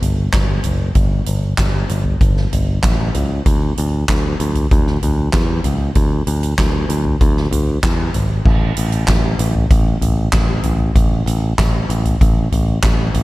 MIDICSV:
0, 0, Header, 1, 3, 480
1, 0, Start_track
1, 0, Tempo, 625000
1, 736, Time_signature, 4, 2, 24, 8
1, 10161, End_track
2, 0, Start_track
2, 0, Title_t, "Picked electric bass"
2, 0, Program_c, 0, 34
2, 18, Note_on_c, 0, 31, 88
2, 214, Note_off_c, 0, 31, 0
2, 257, Note_on_c, 0, 31, 86
2, 454, Note_off_c, 0, 31, 0
2, 499, Note_on_c, 0, 30, 72
2, 695, Note_off_c, 0, 30, 0
2, 732, Note_on_c, 0, 31, 89
2, 931, Note_off_c, 0, 31, 0
2, 978, Note_on_c, 0, 31, 79
2, 1174, Note_off_c, 0, 31, 0
2, 1215, Note_on_c, 0, 31, 95
2, 1413, Note_off_c, 0, 31, 0
2, 1458, Note_on_c, 0, 31, 86
2, 1654, Note_off_c, 0, 31, 0
2, 1695, Note_on_c, 0, 31, 102
2, 1893, Note_off_c, 0, 31, 0
2, 1943, Note_on_c, 0, 31, 93
2, 2137, Note_off_c, 0, 31, 0
2, 2175, Note_on_c, 0, 33, 84
2, 2373, Note_off_c, 0, 33, 0
2, 2420, Note_on_c, 0, 37, 81
2, 2615, Note_off_c, 0, 37, 0
2, 2657, Note_on_c, 0, 38, 96
2, 2854, Note_off_c, 0, 38, 0
2, 2906, Note_on_c, 0, 38, 89
2, 3099, Note_off_c, 0, 38, 0
2, 3137, Note_on_c, 0, 38, 91
2, 3334, Note_off_c, 0, 38, 0
2, 3379, Note_on_c, 0, 38, 96
2, 3575, Note_off_c, 0, 38, 0
2, 3621, Note_on_c, 0, 38, 101
2, 3816, Note_off_c, 0, 38, 0
2, 3863, Note_on_c, 0, 38, 92
2, 4057, Note_off_c, 0, 38, 0
2, 4098, Note_on_c, 0, 40, 93
2, 4294, Note_off_c, 0, 40, 0
2, 4333, Note_on_c, 0, 37, 79
2, 4532, Note_off_c, 0, 37, 0
2, 4575, Note_on_c, 0, 38, 93
2, 4773, Note_off_c, 0, 38, 0
2, 4815, Note_on_c, 0, 38, 92
2, 5013, Note_off_c, 0, 38, 0
2, 5057, Note_on_c, 0, 38, 90
2, 5254, Note_off_c, 0, 38, 0
2, 5292, Note_on_c, 0, 38, 95
2, 5491, Note_off_c, 0, 38, 0
2, 5538, Note_on_c, 0, 38, 106
2, 5734, Note_off_c, 0, 38, 0
2, 5770, Note_on_c, 0, 38, 78
2, 5969, Note_off_c, 0, 38, 0
2, 6015, Note_on_c, 0, 40, 80
2, 6212, Note_off_c, 0, 40, 0
2, 6257, Note_on_c, 0, 32, 81
2, 6454, Note_off_c, 0, 32, 0
2, 6493, Note_on_c, 0, 33, 104
2, 6691, Note_off_c, 0, 33, 0
2, 6741, Note_on_c, 0, 33, 94
2, 6936, Note_off_c, 0, 33, 0
2, 6974, Note_on_c, 0, 33, 89
2, 7172, Note_off_c, 0, 33, 0
2, 7211, Note_on_c, 0, 33, 103
2, 7409, Note_off_c, 0, 33, 0
2, 7454, Note_on_c, 0, 33, 100
2, 7652, Note_off_c, 0, 33, 0
2, 7691, Note_on_c, 0, 33, 88
2, 7890, Note_off_c, 0, 33, 0
2, 7933, Note_on_c, 0, 33, 94
2, 8131, Note_off_c, 0, 33, 0
2, 8174, Note_on_c, 0, 33, 84
2, 8371, Note_off_c, 0, 33, 0
2, 8413, Note_on_c, 0, 33, 95
2, 8610, Note_off_c, 0, 33, 0
2, 8649, Note_on_c, 0, 33, 96
2, 8848, Note_off_c, 0, 33, 0
2, 8898, Note_on_c, 0, 33, 91
2, 9093, Note_off_c, 0, 33, 0
2, 9136, Note_on_c, 0, 33, 94
2, 9332, Note_off_c, 0, 33, 0
2, 9378, Note_on_c, 0, 33, 108
2, 9573, Note_off_c, 0, 33, 0
2, 9618, Note_on_c, 0, 33, 95
2, 9813, Note_off_c, 0, 33, 0
2, 9855, Note_on_c, 0, 33, 99
2, 10051, Note_off_c, 0, 33, 0
2, 10093, Note_on_c, 0, 33, 94
2, 10161, Note_off_c, 0, 33, 0
2, 10161, End_track
3, 0, Start_track
3, 0, Title_t, "Drums"
3, 18, Note_on_c, 9, 43, 63
3, 19, Note_on_c, 9, 42, 69
3, 95, Note_off_c, 9, 43, 0
3, 96, Note_off_c, 9, 42, 0
3, 253, Note_on_c, 9, 38, 87
3, 254, Note_on_c, 9, 39, 69
3, 256, Note_on_c, 9, 36, 101
3, 256, Note_on_c, 9, 42, 73
3, 330, Note_off_c, 9, 38, 0
3, 331, Note_off_c, 9, 39, 0
3, 333, Note_off_c, 9, 36, 0
3, 333, Note_off_c, 9, 42, 0
3, 488, Note_on_c, 9, 42, 68
3, 490, Note_on_c, 9, 43, 49
3, 565, Note_off_c, 9, 42, 0
3, 567, Note_off_c, 9, 43, 0
3, 730, Note_on_c, 9, 42, 83
3, 733, Note_on_c, 9, 36, 111
3, 806, Note_off_c, 9, 42, 0
3, 810, Note_off_c, 9, 36, 0
3, 970, Note_on_c, 9, 42, 65
3, 1046, Note_off_c, 9, 42, 0
3, 1212, Note_on_c, 9, 38, 81
3, 1213, Note_on_c, 9, 39, 66
3, 1213, Note_on_c, 9, 42, 64
3, 1214, Note_on_c, 9, 36, 85
3, 1289, Note_off_c, 9, 38, 0
3, 1289, Note_off_c, 9, 42, 0
3, 1290, Note_off_c, 9, 39, 0
3, 1291, Note_off_c, 9, 36, 0
3, 1454, Note_on_c, 9, 42, 59
3, 1531, Note_off_c, 9, 42, 0
3, 1573, Note_on_c, 9, 43, 58
3, 1650, Note_off_c, 9, 43, 0
3, 1696, Note_on_c, 9, 36, 111
3, 1697, Note_on_c, 9, 42, 71
3, 1773, Note_off_c, 9, 36, 0
3, 1774, Note_off_c, 9, 42, 0
3, 1817, Note_on_c, 9, 38, 35
3, 1894, Note_off_c, 9, 38, 0
3, 1939, Note_on_c, 9, 43, 60
3, 1940, Note_on_c, 9, 42, 71
3, 2015, Note_off_c, 9, 43, 0
3, 2017, Note_off_c, 9, 42, 0
3, 2175, Note_on_c, 9, 38, 90
3, 2176, Note_on_c, 9, 39, 81
3, 2177, Note_on_c, 9, 36, 96
3, 2179, Note_on_c, 9, 42, 70
3, 2252, Note_off_c, 9, 38, 0
3, 2253, Note_off_c, 9, 39, 0
3, 2254, Note_off_c, 9, 36, 0
3, 2255, Note_off_c, 9, 42, 0
3, 2415, Note_on_c, 9, 42, 71
3, 2418, Note_on_c, 9, 43, 52
3, 2492, Note_off_c, 9, 42, 0
3, 2495, Note_off_c, 9, 43, 0
3, 2655, Note_on_c, 9, 42, 84
3, 2657, Note_on_c, 9, 36, 106
3, 2732, Note_off_c, 9, 42, 0
3, 2734, Note_off_c, 9, 36, 0
3, 2899, Note_on_c, 9, 42, 66
3, 2976, Note_off_c, 9, 42, 0
3, 3138, Note_on_c, 9, 36, 81
3, 3139, Note_on_c, 9, 38, 81
3, 3139, Note_on_c, 9, 39, 75
3, 3139, Note_on_c, 9, 42, 77
3, 3215, Note_off_c, 9, 36, 0
3, 3215, Note_off_c, 9, 38, 0
3, 3216, Note_off_c, 9, 39, 0
3, 3216, Note_off_c, 9, 42, 0
3, 3378, Note_on_c, 9, 42, 60
3, 3455, Note_off_c, 9, 42, 0
3, 3495, Note_on_c, 9, 43, 59
3, 3497, Note_on_c, 9, 42, 47
3, 3572, Note_off_c, 9, 43, 0
3, 3574, Note_off_c, 9, 42, 0
3, 3618, Note_on_c, 9, 42, 72
3, 3620, Note_on_c, 9, 36, 114
3, 3695, Note_off_c, 9, 42, 0
3, 3697, Note_off_c, 9, 36, 0
3, 3737, Note_on_c, 9, 38, 31
3, 3814, Note_off_c, 9, 38, 0
3, 3858, Note_on_c, 9, 43, 64
3, 3860, Note_on_c, 9, 42, 64
3, 3935, Note_off_c, 9, 43, 0
3, 3936, Note_off_c, 9, 42, 0
3, 4093, Note_on_c, 9, 38, 102
3, 4094, Note_on_c, 9, 39, 78
3, 4096, Note_on_c, 9, 42, 76
3, 4098, Note_on_c, 9, 36, 100
3, 4170, Note_off_c, 9, 38, 0
3, 4171, Note_off_c, 9, 39, 0
3, 4173, Note_off_c, 9, 42, 0
3, 4175, Note_off_c, 9, 36, 0
3, 4332, Note_on_c, 9, 42, 71
3, 4335, Note_on_c, 9, 43, 54
3, 4409, Note_off_c, 9, 42, 0
3, 4411, Note_off_c, 9, 43, 0
3, 4571, Note_on_c, 9, 42, 86
3, 4576, Note_on_c, 9, 36, 103
3, 4648, Note_off_c, 9, 42, 0
3, 4653, Note_off_c, 9, 36, 0
3, 4815, Note_on_c, 9, 42, 69
3, 4891, Note_off_c, 9, 42, 0
3, 4938, Note_on_c, 9, 42, 49
3, 5015, Note_off_c, 9, 42, 0
3, 5056, Note_on_c, 9, 38, 94
3, 5056, Note_on_c, 9, 39, 66
3, 5056, Note_on_c, 9, 42, 77
3, 5057, Note_on_c, 9, 36, 79
3, 5132, Note_off_c, 9, 38, 0
3, 5133, Note_off_c, 9, 36, 0
3, 5133, Note_off_c, 9, 39, 0
3, 5133, Note_off_c, 9, 42, 0
3, 5296, Note_on_c, 9, 42, 56
3, 5372, Note_off_c, 9, 42, 0
3, 5414, Note_on_c, 9, 43, 55
3, 5491, Note_off_c, 9, 43, 0
3, 5536, Note_on_c, 9, 42, 73
3, 5537, Note_on_c, 9, 36, 102
3, 5612, Note_off_c, 9, 42, 0
3, 5613, Note_off_c, 9, 36, 0
3, 5658, Note_on_c, 9, 38, 32
3, 5735, Note_off_c, 9, 38, 0
3, 5777, Note_on_c, 9, 43, 65
3, 5779, Note_on_c, 9, 42, 69
3, 5854, Note_off_c, 9, 43, 0
3, 5855, Note_off_c, 9, 42, 0
3, 6015, Note_on_c, 9, 36, 107
3, 6017, Note_on_c, 9, 38, 90
3, 6017, Note_on_c, 9, 39, 79
3, 6020, Note_on_c, 9, 42, 78
3, 6092, Note_off_c, 9, 36, 0
3, 6094, Note_off_c, 9, 38, 0
3, 6094, Note_off_c, 9, 39, 0
3, 6097, Note_off_c, 9, 42, 0
3, 6252, Note_on_c, 9, 42, 66
3, 6255, Note_on_c, 9, 43, 52
3, 6329, Note_off_c, 9, 42, 0
3, 6331, Note_off_c, 9, 43, 0
3, 6494, Note_on_c, 9, 36, 120
3, 6494, Note_on_c, 9, 49, 88
3, 6570, Note_off_c, 9, 36, 0
3, 6571, Note_off_c, 9, 49, 0
3, 6732, Note_on_c, 9, 42, 69
3, 6809, Note_off_c, 9, 42, 0
3, 6851, Note_on_c, 9, 42, 49
3, 6928, Note_off_c, 9, 42, 0
3, 6970, Note_on_c, 9, 38, 92
3, 6970, Note_on_c, 9, 42, 78
3, 6971, Note_on_c, 9, 39, 79
3, 6973, Note_on_c, 9, 36, 80
3, 7047, Note_off_c, 9, 38, 0
3, 7047, Note_off_c, 9, 39, 0
3, 7047, Note_off_c, 9, 42, 0
3, 7050, Note_off_c, 9, 36, 0
3, 7212, Note_on_c, 9, 42, 67
3, 7289, Note_off_c, 9, 42, 0
3, 7333, Note_on_c, 9, 43, 63
3, 7410, Note_off_c, 9, 43, 0
3, 7454, Note_on_c, 9, 36, 120
3, 7454, Note_on_c, 9, 42, 78
3, 7531, Note_off_c, 9, 36, 0
3, 7531, Note_off_c, 9, 42, 0
3, 7694, Note_on_c, 9, 43, 67
3, 7695, Note_on_c, 9, 42, 68
3, 7771, Note_off_c, 9, 43, 0
3, 7772, Note_off_c, 9, 42, 0
3, 7931, Note_on_c, 9, 38, 103
3, 7931, Note_on_c, 9, 39, 82
3, 7933, Note_on_c, 9, 36, 111
3, 7934, Note_on_c, 9, 42, 78
3, 8007, Note_off_c, 9, 38, 0
3, 8008, Note_off_c, 9, 39, 0
3, 8010, Note_off_c, 9, 36, 0
3, 8010, Note_off_c, 9, 42, 0
3, 8167, Note_on_c, 9, 42, 70
3, 8169, Note_on_c, 9, 43, 56
3, 8244, Note_off_c, 9, 42, 0
3, 8246, Note_off_c, 9, 43, 0
3, 8293, Note_on_c, 9, 43, 54
3, 8370, Note_off_c, 9, 43, 0
3, 8414, Note_on_c, 9, 36, 111
3, 8414, Note_on_c, 9, 42, 88
3, 8491, Note_off_c, 9, 36, 0
3, 8491, Note_off_c, 9, 42, 0
3, 8657, Note_on_c, 9, 42, 72
3, 8734, Note_off_c, 9, 42, 0
3, 8897, Note_on_c, 9, 36, 83
3, 8899, Note_on_c, 9, 38, 86
3, 8899, Note_on_c, 9, 39, 77
3, 8899, Note_on_c, 9, 42, 77
3, 8973, Note_off_c, 9, 36, 0
3, 8975, Note_off_c, 9, 38, 0
3, 8976, Note_off_c, 9, 39, 0
3, 8976, Note_off_c, 9, 42, 0
3, 9138, Note_on_c, 9, 42, 62
3, 9215, Note_off_c, 9, 42, 0
3, 9256, Note_on_c, 9, 43, 63
3, 9257, Note_on_c, 9, 42, 52
3, 9333, Note_off_c, 9, 43, 0
3, 9334, Note_off_c, 9, 42, 0
3, 9378, Note_on_c, 9, 36, 110
3, 9378, Note_on_c, 9, 42, 80
3, 9455, Note_off_c, 9, 36, 0
3, 9455, Note_off_c, 9, 42, 0
3, 9617, Note_on_c, 9, 43, 66
3, 9618, Note_on_c, 9, 42, 72
3, 9693, Note_off_c, 9, 43, 0
3, 9695, Note_off_c, 9, 42, 0
3, 9854, Note_on_c, 9, 38, 99
3, 9854, Note_on_c, 9, 39, 78
3, 9856, Note_on_c, 9, 36, 101
3, 9857, Note_on_c, 9, 42, 78
3, 9930, Note_off_c, 9, 38, 0
3, 9931, Note_off_c, 9, 39, 0
3, 9933, Note_off_c, 9, 36, 0
3, 9933, Note_off_c, 9, 42, 0
3, 10095, Note_on_c, 9, 42, 72
3, 10097, Note_on_c, 9, 43, 55
3, 10161, Note_off_c, 9, 42, 0
3, 10161, Note_off_c, 9, 43, 0
3, 10161, End_track
0, 0, End_of_file